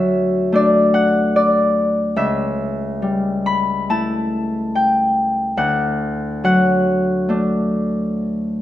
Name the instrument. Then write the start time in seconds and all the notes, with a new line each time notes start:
harp
Already playing: D2 F#3 A3 E5 F#5 A5
0.52 A3 D4 D5
0.94 F#5
1.36 D5
2.16 C#2 E5
3.02 G3
3.46 B5
3.89 A3 E4 A5
4.75 G5
5.57 D2 F#5
6.44 F#3 F#5
7.29 A3 D4